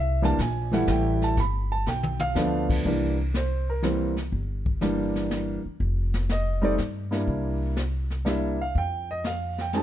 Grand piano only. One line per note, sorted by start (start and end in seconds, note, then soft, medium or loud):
0.00 0.24 E5 medium
0.22 0.36 E3 medium
0.22 0.36 G3 medium
0.22 0.37 A#3 medium
0.22 0.37 D4 medium
0.22 0.39 A5 loud
0.42 0.73 G#5 medium
0.71 1.33 E3 medium
0.71 1.34 G3 medium
0.71 1.34 A3 medium
0.71 1.34 E4 medium
0.71 0.88 F#5 medium
0.90 1.22 G5 medium
1.24 1.38 A5 loud
1.40 1.71 B5 loud
1.72 1.86 A5 medium
1.88 2.20 G5 medium
2.21 2.66 F5 loud
2.35 2.84 F3 medium
2.35 2.85 A3 medium
2.35 2.85 B3 medium
2.35 2.85 D4 medium
2.86 3.15 E3 medium
2.86 3.15 G3 medium
2.86 3.15 A#3 medium
2.86 3.16 D4 medium
3.37 3.68 C5 medium
3.70 3.83 A#4 medium
3.82 4.13 E3 medium
3.82 4.13 G3 medium
3.82 4.13 A#3 medium
3.82 4.14 C4 medium
4.81 5.57 E3 medium
4.81 5.58 G3 medium
4.81 5.58 A#3 medium
4.81 5.58 D4 medium
6.32 6.63 D#5 medium
6.62 6.76 G3 medium
6.62 6.76 A3 medium
6.62 6.77 C4 medium
6.62 6.77 D#4 medium
6.62 6.73 D5 loud
7.11 7.73 G3 medium
7.11 7.73 A#3 medium
7.11 7.73 D4 medium
7.11 7.73 E4 medium
8.25 8.56 G3 medium
8.25 8.56 A#3 medium
8.25 8.56 D4 medium
8.25 8.56 E4 medium
8.25 8.60 E5 medium
8.61 8.76 F5 medium
8.78 9.09 G5 medium
9.11 9.25 D#5 medium
9.27 9.58 F5 medium
9.61 9.75 G5 medium
9.73 9.83 G3 medium
9.73 9.83 A3 soft
9.73 9.83 C4 medium
9.73 9.83 D#4 medium
9.73 9.76 G#5 medium
9.77 9.83 A5 medium